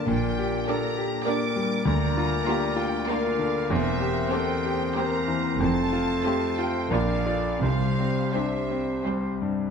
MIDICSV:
0, 0, Header, 1, 11, 480
1, 0, Start_track
1, 0, Tempo, 598205
1, 60, Time_signature, 3, 2, 24, 8
1, 1978, Tempo, 623701
1, 3898, Tempo, 650759
1, 5338, Tempo, 713436
1, 7216, End_track
2, 0, Start_track
2, 0, Title_t, "Violin section"
2, 0, Program_c, 0, 48
2, 62, Note_on_c, 0, 79, 79
2, 535, Note_off_c, 0, 79, 0
2, 550, Note_on_c, 0, 82, 81
2, 1017, Note_off_c, 0, 82, 0
2, 1018, Note_on_c, 0, 86, 80
2, 1493, Note_off_c, 0, 86, 0
2, 1500, Note_on_c, 0, 82, 91
2, 2203, Note_off_c, 0, 82, 0
2, 2217, Note_on_c, 0, 79, 82
2, 2454, Note_off_c, 0, 79, 0
2, 2454, Note_on_c, 0, 77, 71
2, 2930, Note_on_c, 0, 76, 88
2, 2931, Note_off_c, 0, 77, 0
2, 3394, Note_off_c, 0, 76, 0
2, 3399, Note_on_c, 0, 79, 83
2, 3894, Note_on_c, 0, 82, 83
2, 3897, Note_off_c, 0, 79, 0
2, 4373, Note_off_c, 0, 82, 0
2, 4374, Note_on_c, 0, 81, 91
2, 5079, Note_off_c, 0, 81, 0
2, 5093, Note_on_c, 0, 79, 74
2, 5338, Note_off_c, 0, 79, 0
2, 5340, Note_on_c, 0, 77, 71
2, 5798, Note_off_c, 0, 77, 0
2, 5808, Note_on_c, 0, 77, 79
2, 6288, Note_off_c, 0, 77, 0
2, 6302, Note_on_c, 0, 76, 59
2, 6781, Note_off_c, 0, 76, 0
2, 7216, End_track
3, 0, Start_track
3, 0, Title_t, "Oboe"
3, 0, Program_c, 1, 68
3, 76, Note_on_c, 1, 74, 48
3, 542, Note_off_c, 1, 74, 0
3, 556, Note_on_c, 1, 74, 53
3, 849, Note_off_c, 1, 74, 0
3, 1030, Note_on_c, 1, 74, 56
3, 1467, Note_off_c, 1, 74, 0
3, 1507, Note_on_c, 1, 74, 55
3, 2441, Note_off_c, 1, 74, 0
3, 2463, Note_on_c, 1, 74, 62
3, 2944, Note_on_c, 1, 72, 59
3, 2956, Note_off_c, 1, 74, 0
3, 3410, Note_off_c, 1, 72, 0
3, 3421, Note_on_c, 1, 72, 58
3, 3898, Note_off_c, 1, 72, 0
3, 3908, Note_on_c, 1, 72, 60
3, 4370, Note_off_c, 1, 72, 0
3, 4390, Note_on_c, 1, 72, 56
3, 5349, Note_on_c, 1, 74, 57
3, 5359, Note_off_c, 1, 72, 0
3, 5803, Note_off_c, 1, 74, 0
3, 5807, Note_on_c, 1, 72, 50
3, 6288, Note_off_c, 1, 72, 0
3, 6296, Note_on_c, 1, 72, 48
3, 7009, Note_off_c, 1, 72, 0
3, 7216, End_track
4, 0, Start_track
4, 0, Title_t, "Clarinet"
4, 0, Program_c, 2, 71
4, 63, Note_on_c, 2, 70, 51
4, 525, Note_off_c, 2, 70, 0
4, 530, Note_on_c, 2, 70, 53
4, 835, Note_off_c, 2, 70, 0
4, 1000, Note_on_c, 2, 70, 54
4, 1452, Note_off_c, 2, 70, 0
4, 1482, Note_on_c, 2, 70, 58
4, 2429, Note_off_c, 2, 70, 0
4, 2467, Note_on_c, 2, 70, 60
4, 2923, Note_off_c, 2, 70, 0
4, 2928, Note_on_c, 2, 70, 58
4, 3393, Note_off_c, 2, 70, 0
4, 3418, Note_on_c, 2, 70, 57
4, 3891, Note_off_c, 2, 70, 0
4, 3895, Note_on_c, 2, 70, 58
4, 4364, Note_off_c, 2, 70, 0
4, 4377, Note_on_c, 2, 69, 59
4, 5336, Note_on_c, 2, 70, 52
4, 5346, Note_off_c, 2, 69, 0
4, 5569, Note_on_c, 2, 69, 49
4, 5579, Note_off_c, 2, 70, 0
4, 5804, Note_off_c, 2, 69, 0
4, 5808, Note_on_c, 2, 67, 50
4, 6289, Note_off_c, 2, 67, 0
4, 6297, Note_on_c, 2, 67, 48
4, 7010, Note_off_c, 2, 67, 0
4, 7216, End_track
5, 0, Start_track
5, 0, Title_t, "Violin section"
5, 0, Program_c, 3, 48
5, 548, Note_on_c, 3, 67, 53
5, 551, Note_on_c, 3, 74, 53
5, 895, Note_off_c, 3, 67, 0
5, 896, Note_off_c, 3, 74, 0
5, 1012, Note_on_c, 3, 74, 55
5, 1014, Note_on_c, 3, 67, 56
5, 1367, Note_off_c, 3, 74, 0
5, 1368, Note_off_c, 3, 67, 0
5, 1985, Note_on_c, 3, 70, 57
5, 1990, Note_on_c, 3, 65, 61
5, 2333, Note_off_c, 3, 70, 0
5, 2335, Note_off_c, 3, 65, 0
5, 2454, Note_on_c, 3, 70, 60
5, 2455, Note_on_c, 3, 65, 62
5, 2810, Note_off_c, 3, 70, 0
5, 2811, Note_off_c, 3, 65, 0
5, 3404, Note_on_c, 3, 67, 60
5, 3404, Note_on_c, 3, 72, 59
5, 3771, Note_off_c, 3, 72, 0
5, 3772, Note_off_c, 3, 67, 0
5, 3901, Note_on_c, 3, 67, 58
5, 3903, Note_on_c, 3, 72, 59
5, 4255, Note_off_c, 3, 67, 0
5, 4256, Note_off_c, 3, 72, 0
5, 4844, Note_on_c, 3, 72, 54
5, 4846, Note_on_c, 3, 65, 56
5, 5208, Note_off_c, 3, 72, 0
5, 5210, Note_off_c, 3, 65, 0
5, 5337, Note_on_c, 3, 65, 55
5, 5337, Note_on_c, 3, 70, 53
5, 5682, Note_off_c, 3, 70, 0
5, 5683, Note_off_c, 3, 65, 0
5, 6299, Note_on_c, 3, 72, 51
5, 6301, Note_on_c, 3, 60, 48
5, 6656, Note_off_c, 3, 72, 0
5, 6657, Note_off_c, 3, 60, 0
5, 6783, Note_on_c, 3, 72, 47
5, 6785, Note_on_c, 3, 60, 50
5, 7141, Note_off_c, 3, 72, 0
5, 7142, Note_off_c, 3, 60, 0
5, 7216, End_track
6, 0, Start_track
6, 0, Title_t, "Grand piano"
6, 0, Program_c, 4, 0
6, 0, Control_c, 4, 64, 127
6, 0, Note_on_c, 4, 50, 47
6, 0, Note_on_c, 4, 67, 45
6, 61, Note_on_c, 4, 46, 58
6, 74, Control_c, 4, 64, 0
6, 83, Note_off_c, 4, 50, 0
6, 83, Note_off_c, 4, 67, 0
6, 196, Control_c, 4, 64, 127
6, 309, Note_on_c, 4, 67, 52
6, 546, Note_on_c, 4, 69, 43
6, 686, Note_off_c, 4, 67, 0
6, 778, Note_on_c, 4, 67, 52
6, 780, Note_off_c, 4, 69, 0
6, 1008, Note_on_c, 4, 58, 49
6, 1156, Note_off_c, 4, 67, 0
6, 1252, Note_on_c, 4, 55, 49
6, 1392, Note_off_c, 4, 58, 0
6, 1459, Note_off_c, 4, 46, 0
6, 1485, Note_on_c, 4, 38, 64
6, 1492, Note_off_c, 4, 55, 0
6, 1504, Control_c, 4, 64, 0
6, 1612, Control_c, 4, 64, 127
6, 1743, Note_on_c, 4, 65, 52
6, 1984, Note_on_c, 4, 67, 50
6, 2123, Note_off_c, 4, 65, 0
6, 2207, Note_on_c, 4, 65, 54
6, 2215, Note_off_c, 4, 67, 0
6, 2451, Note_on_c, 4, 58, 56
6, 2594, Note_off_c, 4, 65, 0
6, 2686, Note_on_c, 4, 50, 50
6, 2835, Note_off_c, 4, 58, 0
6, 2896, Note_off_c, 4, 38, 0
6, 2926, Note_off_c, 4, 50, 0
6, 2929, Note_on_c, 4, 40, 64
6, 2943, Control_c, 4, 64, 0
6, 3061, Control_c, 4, 64, 127
6, 3163, Note_on_c, 4, 67, 55
6, 3405, Note_on_c, 4, 69, 49
6, 3549, Note_off_c, 4, 67, 0
6, 3650, Note_off_c, 4, 69, 0
6, 3657, Note_on_c, 4, 67, 54
6, 3899, Note_on_c, 4, 58, 55
6, 4046, Note_off_c, 4, 67, 0
6, 4134, Note_on_c, 4, 52, 52
6, 4280, Note_off_c, 4, 58, 0
6, 4346, Note_off_c, 4, 40, 0
6, 4372, Note_on_c, 4, 41, 62
6, 4374, Note_off_c, 4, 52, 0
6, 4391, Control_c, 4, 64, 0
6, 4529, Control_c, 4, 64, 127
6, 4612, Note_on_c, 4, 65, 50
6, 4852, Note_on_c, 4, 67, 45
6, 4997, Note_off_c, 4, 65, 0
6, 5094, Note_off_c, 4, 67, 0
6, 5095, Note_on_c, 4, 65, 50
6, 5308, Note_off_c, 4, 41, 0
6, 5336, Note_on_c, 4, 34, 61
6, 5339, Note_off_c, 4, 65, 0
6, 5353, Control_c, 4, 64, 0
6, 5452, Control_c, 4, 64, 127
6, 5572, Note_on_c, 4, 65, 42
6, 5575, Note_on_c, 4, 74, 48
6, 5785, Note_off_c, 4, 65, 0
6, 5786, Note_off_c, 4, 74, 0
6, 5791, Note_off_c, 4, 34, 0
6, 5815, Note_on_c, 4, 36, 53
6, 5822, Control_c, 4, 64, 0
6, 5952, Control_c, 4, 64, 127
6, 6065, Note_on_c, 4, 60, 47
6, 6307, Note_on_c, 4, 62, 39
6, 6448, Note_off_c, 4, 60, 0
6, 6543, Note_off_c, 4, 62, 0
6, 6544, Note_on_c, 4, 60, 45
6, 6785, Note_on_c, 4, 55, 44
6, 6928, Note_off_c, 4, 60, 0
6, 7024, Note_on_c, 4, 43, 39
6, 7169, Note_off_c, 4, 55, 0
6, 7216, Note_off_c, 4, 36, 0
6, 7216, Note_off_c, 4, 43, 0
6, 7216, End_track
7, 0, Start_track
7, 0, Title_t, "Viola section"
7, 0, Program_c, 5, 48
7, 548, Note_on_c, 5, 62, 52
7, 550, Note_on_c, 5, 58, 54
7, 895, Note_off_c, 5, 62, 0
7, 896, Note_off_c, 5, 58, 0
7, 1019, Note_on_c, 5, 62, 60
7, 1025, Note_on_c, 5, 58, 60
7, 1371, Note_off_c, 5, 62, 0
7, 1374, Note_off_c, 5, 58, 0
7, 1984, Note_on_c, 5, 62, 55
7, 1986, Note_on_c, 5, 58, 57
7, 2332, Note_off_c, 5, 62, 0
7, 2333, Note_off_c, 5, 58, 0
7, 2458, Note_on_c, 5, 62, 63
7, 2462, Note_on_c, 5, 58, 58
7, 2812, Note_off_c, 5, 62, 0
7, 2814, Note_off_c, 5, 58, 0
7, 3410, Note_on_c, 5, 58, 56
7, 3410, Note_on_c, 5, 60, 58
7, 3775, Note_off_c, 5, 58, 0
7, 3775, Note_off_c, 5, 60, 0
7, 3907, Note_on_c, 5, 58, 61
7, 3909, Note_on_c, 5, 60, 59
7, 4258, Note_off_c, 5, 58, 0
7, 4259, Note_off_c, 5, 60, 0
7, 4860, Note_on_c, 5, 57, 50
7, 4862, Note_on_c, 5, 60, 51
7, 5217, Note_off_c, 5, 57, 0
7, 5218, Note_off_c, 5, 60, 0
7, 5346, Note_on_c, 5, 58, 54
7, 5347, Note_on_c, 5, 62, 52
7, 5687, Note_off_c, 5, 58, 0
7, 5688, Note_off_c, 5, 62, 0
7, 6300, Note_on_c, 5, 55, 46
7, 6301, Note_on_c, 5, 60, 49
7, 6656, Note_off_c, 5, 55, 0
7, 6657, Note_off_c, 5, 60, 0
7, 6786, Note_on_c, 5, 55, 51
7, 6790, Note_on_c, 5, 60, 51
7, 7142, Note_off_c, 5, 55, 0
7, 7145, Note_off_c, 5, 60, 0
7, 7216, End_track
8, 0, Start_track
8, 0, Title_t, "French horn section"
8, 0, Program_c, 6, 60
8, 0, Note_on_c, 6, 58, 54
8, 65, Note_on_c, 6, 62, 56
8, 1457, Note_off_c, 6, 58, 0
8, 1501, Note_on_c, 6, 58, 65
8, 2810, Note_off_c, 6, 62, 0
8, 2940, Note_on_c, 6, 60, 65
8, 4351, Note_off_c, 6, 58, 0
8, 4379, Note_on_c, 6, 57, 67
8, 5314, Note_off_c, 6, 60, 0
8, 5322, Note_off_c, 6, 57, 0
8, 5335, Note_on_c, 6, 62, 54
8, 5342, Note_on_c, 6, 58, 52
8, 5799, Note_on_c, 6, 60, 57
8, 5802, Note_on_c, 6, 55, 55
8, 5805, Note_off_c, 6, 62, 0
8, 5808, Note_off_c, 6, 58, 0
8, 6996, Note_off_c, 6, 60, 0
8, 6997, Note_off_c, 6, 55, 0
8, 7216, End_track
9, 0, Start_track
9, 0, Title_t, "Timpani"
9, 0, Program_c, 7, 47
9, 5808, Note_on_c, 7, 48, 60
9, 6512, Note_off_c, 7, 48, 0
9, 7216, End_track
10, 0, Start_track
10, 0, Title_t, "Cello section"
10, 0, Program_c, 8, 48
10, 69, Note_on_c, 8, 46, 66
10, 449, Note_off_c, 8, 46, 0
10, 1497, Note_on_c, 8, 38, 71
10, 1879, Note_off_c, 8, 38, 0
10, 2934, Note_on_c, 8, 40, 76
10, 3305, Note_off_c, 8, 40, 0
10, 4375, Note_on_c, 8, 41, 77
10, 4753, Note_off_c, 8, 41, 0
10, 5339, Note_on_c, 8, 46, 63
10, 5707, Note_off_c, 8, 46, 0
10, 5804, Note_on_c, 8, 48, 62
10, 6197, Note_off_c, 8, 48, 0
10, 7216, End_track
11, 0, Start_track
11, 0, Title_t, "Double bass section"
11, 0, Program_c, 10, 48
11, 65, Note_on_c, 10, 34, 62
11, 447, Note_off_c, 10, 34, 0
11, 1491, Note_on_c, 10, 38, 67
11, 1876, Note_off_c, 10, 38, 0
11, 2932, Note_on_c, 10, 28, 72
11, 3304, Note_off_c, 10, 28, 0
11, 4372, Note_on_c, 10, 29, 69
11, 4751, Note_off_c, 10, 29, 0
11, 5342, Note_on_c, 10, 34, 55
11, 5708, Note_off_c, 10, 34, 0
11, 5811, Note_on_c, 10, 36, 60
11, 6200, Note_off_c, 10, 36, 0
11, 7216, End_track
0, 0, End_of_file